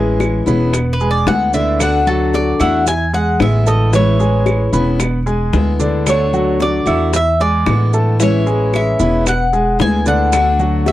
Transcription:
Already playing: A1 E3 G#3 C#4 E4 G#4 G#5
0.20 high bongo, claves, maracas
0.46 E1 G#3 B3 C#4 E4 B4 B5, high bongo, maracas
0.73 muted steel-string acoustic guitar stroke, high bongo, claves, maracas
0.93 B4
1.00 G#3 G#4 G#5, maracas
1.11 D5
1.26 D2 D3 G#3 B3 E4 F#5, high bongo, low bongo, maracas
1.53 D3 D4 D5 E5, high bongo, maracas
1.79 D3 A3 D4 F#4 F#5, high bongo, claves, maracas
2.07 F#3 F#4 A4 F#5, high bongo, maracas
2.34 D5, high bongo, maracas
2.59 E2 A3 D4 E4 F#4 E5 F#5 E6, claves, maracas
2.86 G#5, muted steel-string acoustic guitar stroke, high bongo, maracas
3.13 G#3 G#4 F#5 G#5, high bongo, maracas
3.40 A1 D3 G#3 B3 E4 E5, high bongo, low bongo, claves, maracas
3.66 A3 A4 D#5 A5, high bongo, maracas
3.93 E3 G#3 C#4 E4 C#5 E5, high bongo, maracas
4.19 G#3 G#4 G#5, high bongo, maracas
4.46 high bongo, claves, maracas
4.73 E1 G#3 B3 C#4 E4 B4 B5, high bongo, maracas
5.00 muted steel-string acoustic guitar stroke, high bongo, claves, maracas
5.26 G#3 G#4 G#5, maracas
5.53 D2 D3 G#3 B3 E4, high bongo, low bongo, maracas
5.79 D3 D4 D5, high bongo, maracas
6.06 D3 A3 D4 F#4 C#5, high bongo, claves, maracas
6.33 F#3 F#4 F#5, high bongo, maracas
6.60 D5, high bongo, maracas
6.86 E2 A3 D4 E4 F#4 E5 E6, claves, maracas
7.13 E5, muted steel-string acoustic guitar stroke, high bongo, maracas
7.40 G#3 G#4 D5 G#5, high bongo, maracas
7.66 A1 D3 G#3 B3 E4, high bongo, low bongo, claves, maracas
7.93 A3 A4 A5, high bongo, maracas
8.20 E3 G#3 C#4 E4 C#5 E5, high bongo, maracas
8.46 G#3 G#4 G#5, high bongo, maracas
8.73 E5, high bongo, claves, maracas
8.99 E1 G#3 B3 C#4 E4 B4 B5, high bongo, maracas
9.26 F#5, muted steel-string acoustic guitar stroke, high bongo, claves, maracas
9.53 G#3 G#4 G#5, maracas
9.79 D2 D3 G#3 B3 E4 G#5, high bongo, low bongo, maracas
10.06 D3 D4 D5 F#5, high bongo, maracas
10.32 D3 A3 D4 F#4, high bongo, claves, maracas
10.59 F#3 F#4 F#5, high bongo, maracas
10.86 E5, high bongo, maracas

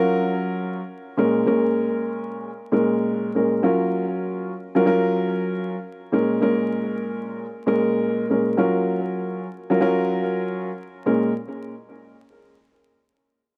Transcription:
Already playing: F#3 C#4 F4 A#4
1.17 A#2 G#3 C#4 A#4
1.46 A#2 G#3 C#4 A#4
2.72 A#2 G#3 C#4 A#4
3.35 A#2 G#3 C#4 A#4
3.63 F#3 C#4 F4 A#4
4.75 F#3 C#4 F4 A#4
4.86 F#3 C#4 F4 A#4
6.12 A#2 G#3 C#4 A#4
6.41 A#2 G#3 C#4 A#4
7.66 A#2 G#3 C#4 A#4
8.29 A#2 G#3 C#4 A#4
8.57 F#3 C#4 F4 A#4
9.70 F#3 C#4 F4 A#4
9.80 F#3 C#4 F4 A#4
11.06 A#2 G#3 C#4 A#4

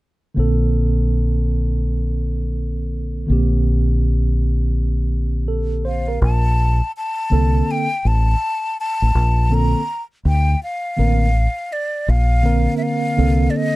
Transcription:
0.34 A#1 D3 A#3 C4
0.40 A4
3.27 A#1 D3 A#3 C4
3.32 G4
5.48 A4
5.85 C5 F5
6.08 A#4
6.22 A#1 A5
6.97 A5
7.30 C2 D3 A#3 C4 A4
7.71 G5
8.05 A1 A5
8.80 A5
9.02 A1
9.15 A#1
9.49 D3 A#3 C4 A4
9.54 A#5
10.25 D2 G5
10.63 F5
10.97 A1 D3 A#3 C4 A#4
11.73 D5
12.08 A#1 F5
12.43 D3 A#3 C4 A#4
12.77 E5
12.83 F5
13.16 C2 D3 A#3 C4 A4
13.50 D5
13.56 D#5

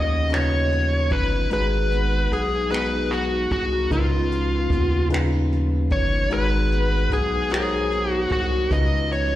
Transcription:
Already playing: D#2 C#3 F3 B3 C#4 D#4 F4 B4 D#5
0.30 C#3 C#4 D#4 F4 B4, closed hi-hat
0.34 C#5, finger snap
0.71 F3, closed hi-hat
1.10 G1 D#4 B4, kick, closed hi-hat
1.50 G#1 G#3 D#4 F#4 G#4 B4, closed hi-hat
1.92 B3, closed hi-hat
2.31 B1 F#4 G#4, closed hi-hat
2.69 G#3 B3 D#4 F#4 G#4 B4, closed hi-hat
2.74 finger snap
2.93 A#4
3.11 B3 F#4, closed hi-hat
3.51 C2 F#4 G#4, kick, closed hi-hat
3.72 A#4
3.90 C#2 C#3 C#4 D#4 F4 A#4, kick, closed hi-hat
3.99 B4
4.31 F3, closed hi-hat
4.70 D#2 B3, kick, closed hi-hat
5.09 C#3 C#4 D#4 F4 B4, closed hi-hat
5.14 finger snap
5.32 D#4
5.52 F3, closed hi-hat
5.90 G1 D#4 C#5, kick, closed hi-hat
6.30 G#1 G#3 D#4 F#4 G#4 B4, closed hi-hat
6.72 B3, closed hi-hat
7.10 B1 F#4 G#4, kick, closed hi-hat
7.50 G#3 D#4 F#4 G#4 A#4 C5, closed hi-hat
7.54 finger snap
7.59 C#5
7.92 B3, closed hi-hat
8.12 F#4
8.29 C2 F#4 G#4, kick, closed hi-hat
8.51 A#4
8.70 C#2 C#3 C#4 D#4 F4 B4 D#5, kick, closed hi-hat
9.11 F3 C#5, closed hi-hat

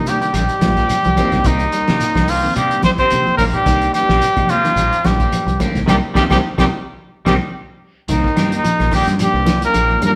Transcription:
Already playing: C3 D#3 A#3 D4 D#4
0.06 G2 D#3 G4, muted clean electric guitar stroke, closed hi-hat, low conga, shekere
0.10 G3
0.22 D#3, closed hi-hat, shekere
0.33 A#1 G2 D#3 G3 C4 G4, muted clean electric guitar stroke, snare, closed hi-hat, high conga, claves, shekere
0.38 G3
0.49 closed hi-hat, shekere
0.61 A#1 D#3 G3 A#3 F4, kick, snare, closed hi-hat, high conga, shekere
0.77 A#3 C4 G4, kick, snare, closed hi-hat, shekere
0.89 muted fingered electric bass stroke, closed hi-hat, high conga, claves, shekere
1.04 C2 F3, closed hi-hat, high conga, shekere
1.17 D#3 G3 A#3 C4 G4, muted clean electric guitar stroke, kick, closed hi-hat, high conga, low conga, claves, shekere
1.32 C2, kick, snare, closed hi-hat, shekere
1.44 C2 D#2 D#3 A#3 C4 D#4 G4, muted clean electric guitar stroke, kick, closed hi-hat, high conga, low conga, shekere
1.48 D#3
1.59 closed hi-hat, shekere
1.72 G3, closed hi-hat, claves, shekere
1.88 C3 D#3 A#3 G4 D5, muted clean electric guitar stroke, snare, closed hi-hat, shekere
2.00 snare, closed hi-hat, high conga, shekere
2.15 C2 F3, kick, snare, high conga, claves, shekere
2.28 F2 D#3 F3 A#3 C4 F4 G4, open hi-hat, low conga, shekere
2.42 D#3 A#3 C4, shekere
2.56 G2 C3 D#3 G3 A#3 C4 G4, closed hi-hat, high conga, claves, shekere
2.71 closed hi-hat, shekere
2.83 C3 G3 C4 C5, kick, snare, closed hi-hat, high conga, low conga, shekere
2.98 C3 A#3 C4 G4 C5, kick, snare, closed hi-hat, shekere
3.10 C3 D#3 A#3 D4, closed hi-hat, high conga, claves, shekere
3.26 F3, muted fingered electric bass stroke, shekere
3.37 A#1 A#2 D#3 A#3 C4 G4 A#4, kick, snare, open hi-hat, high conga, low conga, claves, shekere
3.53 G2 G3 G4, kick, closed hi-hat, shekere
3.65 C2 D#3 A#3 C4 D#4 G4, kick, closed hi-hat, high conga, shekere
3.81 closed hi-hat, shekere
3.94 G2 G3 G4, muted clean electric guitar stroke, snare, closed hi-hat, claves, shekere
4.09 A#1 A#3 C4 G4, snare, shekere
4.21 closed hi-hat, high conga, shekere
4.36 C3 D#3 F3 A#3 D#4, kick, closed hi-hat, high conga, claves, shekere
4.49 F2 D#3 F3 A#3 C4 F4 G4, closed hi-hat, low conga, shekere
4.64 D#3, snare, closed hi-hat, shekere
4.76 A#1 D#3 G3 A#3 C4 G4, closed hi-hat, high conga, claves, shekere
4.92 muted fingered electric bass stroke, closed hi-hat, shekere
5.03 A#1 G2 D#3 G3 A#3 D4 G4, kick, snare, closed hi-hat, high conga, shekere
5.20 A#3 C4 G4, kick, closed hi-hat, shekere
5.32 closed hi-hat, high conga, claves, shekere
5.46 C2 F3, closed hi-hat, shekere
5.59 D#3 G3 A#3 C4 D4 G4, kick, snare, closed hi-hat, high conga, low conga, claves, shekere
5.75 C2, kick, snare, closed hi-hat, shekere
5.86 C2 G2 A#2 C3 D#3 G3 A#3 C4 D#4 G4, kick, snare, high conga, claves, shekere
6.14 C2 G2 A#2 C3 D#3 G3 A#3 C4 D#4 G4, kick, snare, high conga, claves, shekere
6.30 C2 G2 A#2 C3 D#3 G3 A#3 C4 D#4 G4, kick, snare, high conga, claves, shekere
6.58 C2 G2 A#2 C3 D#3 G3 A#3 C4 D#4 G4, kick, snare, high conga, claves, shekere
7.25 C2 G2 A#2 C3 D#3 G3 A#3 C4 D#4 G4, kick, snare, high conga, claves, shekere
8.08 C2 D#2 D#3 A#3 C4 D4 D#4, muted clean electric guitar stroke, kick, closed hi-hat, shekere
8.24 kick, shekere
8.36 G2 D#3 G3 A#3 C4 D4 G4, snare, closed hi-hat, claves, shekere
8.52 D#2 D#3 D#4, closed hi-hat, shekere
8.64 F3, muted fingered electric bass stroke, closed hi-hat, shekere
8.79 A#1, snare, high conga, claves, shekere
8.91 G2 D#3 G3 A#3 C4 D4 G4, kick, open hi-hat, low conga, shekere
9.07 G2, snare, closed hi-hat, shekere
9.19 G2 D#3 F3 G3 A#3 D4 G4, closed hi-hat, high conga, claves, shekere
9.34 C2 C4 G4, shekere
9.46 D#3, snare, closed hi-hat, high conga, shekere
9.62 A#2 A#3 A#4, snare, closed hi-hat, shekere
9.74 A#1 D3 D#3 A#3 C4 G4, closed hi-hat, high conga, claves, shekere
9.90 high conga, shekere
10.01 G2 A#2 D#3, closed hi-hat, high conga, low conga, claves, shekere
10.06 A#3 A#4

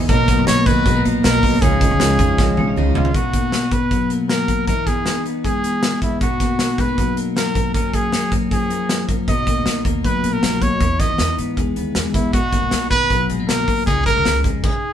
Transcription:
Already playing: G#3 B3
0.00 D#4
0.08 B1 B2 F#3 A#3 B3 D#4 A#4 A#5, kick, closed hi-hat
0.28 F#3 A#3 D#4, kick, snare, closed hi-hat
0.39 B1
0.47 B1 B2 F#3 A#3 D#4 C#5, snare, closed hi-hat
0.66 D#2 F#3 A#3 D#4 B4, kick, closed hi-hat
0.85 B1 B2 F#3 G#3 A#3 D#4, kick, closed hi-hat
0.95 A#3
1.04 A#1 F#3 A#3 D#4, closed hi-hat
1.23 B1 B2 F#3 A#3 D#4 A#4, snare, closed hi-hat
1.42 B1 F#3 A#3 D#4, kick, open hi-hat
1.61 C#2 C#3 F3 G#3 C#4 D#4 F4 G#4, kick, closed hi-hat
1.80 F3 G#3 D#4, kick, closed hi-hat
1.91 C#2
1.99 C#2 C#3 F3 G#3 D#4, snare, closed hi-hat
2.18 F2 F3 G#3 D#4, kick, closed hi-hat
2.38 C#2 C#3 F3 G#3 D#4, kick, snare
2.57 B1 F3 G#3 C#4 D#4, high tom
2.67 D#4
2.76 C#2 C#3 F3 G#3 D#4
2.94 C#2 F3 G#3 D#4 F4, floor tom
3.05 floor tom
3.14 B2 D#4 F#4, kick, closed hi-hat
3.33 A#3, kick, closed hi-hat
3.52 C#4, snare, closed hi-hat
3.63 D#4
3.72 B4, kick, closed hi-hat
3.91 F#3, kick, closed hi-hat
4.10 A#3, closed hi-hat
4.29 F#3 A#4, snare, closed hi-hat
4.48 A#3, kick, closed hi-hat
4.67 E3 D#4 A#4, kick, closed hi-hat
4.87 B3 G#4, kick, closed hi-hat
5.06 D#4, snare, closed hi-hat
5.26 B3, closed hi-hat
5.45 G#3 G#4, kick, closed hi-hat
5.64 B3, closed hi-hat
5.83 G#3, snare, closed hi-hat
6.02 B3 E4, kick, closed hi-hat
6.21 B2 D#4 F#4, kick, closed hi-hat
6.40 A#3, kick, snare, closed hi-hat
6.59 D#4, snare, closed hi-hat
6.78 G#3 B4, kick, closed hi-hat
6.88 A#3
6.97 F#3, kick, closed hi-hat
7.17 A#3, closed hi-hat
7.36 F#3 A#4, snare, closed hi-hat
7.55 A#3, kick, closed hi-hat
7.74 F#2 C#4 A#4, kick, closed hi-hat
7.93 A#3 G#4, kick, closed hi-hat
8.12 C#4, snare, closed hi-hat
8.32 A#3, kick, closed hi-hat
8.51 F3 G#4, kick, closed hi-hat
8.70 A#3, closed hi-hat
8.89 F3, snare, closed hi-hat
9.09 A#3, kick, closed hi-hat
9.28 B1 B2 D#4 D#5, kick, closed hi-hat
9.47 A#3, kick, closed hi-hat
9.57 B1
9.66 B1 D#4, snare, closed hi-hat
9.85 D#2 A#3, kick, closed hi-hat
10.04 B1 F#3 B4, kick, closed hi-hat
10.24 A#1 A#3, closed hi-hat
10.33 A#4
10.43 B1 F#3, snare, closed hi-hat
10.62 B1 A#3 C#5, kick, closed hi-hat
10.80 E2 E3 D#4, kick, closed hi-hat
11.00 B3 D#5, kick, snare, closed hi-hat
11.10 E2
11.18 E2 D#4, snare, closed hi-hat
11.38 G#2 B3, closed hi-hat
11.57 E2 G#3, kick, closed hi-hat
11.76 D#2 B3, closed hi-hat
11.95 E2 G#3, snare, closed hi-hat
12.14 E2 B3 E4, kick, closed hi-hat
12.33 B1 B2 D#4 F#4, kick, closed hi-hat
12.53 A#3, kick, closed hi-hat
12.63 B1
12.71 B1 D#4, snare, closed hi-hat
12.91 D#2 B4, kick, closed hi-hat
13.10 B1 F#3, kick, closed hi-hat
13.30 A#1 G#3, closed hi-hat
13.40 A#3
13.48 B1 F#3 A#4, snare, closed hi-hat
13.68 B1 A#3, kick, open hi-hat
13.86 C#2 C#3 D#4 G#4, kick, closed hi-hat
14.06 G#3 A#4, kick, closed hi-hat
14.17 C#2
14.25 C#2 D#4, snare, closed hi-hat
14.44 F2 G#3, kick, closed hi-hat
14.64 G#4, kick, crash

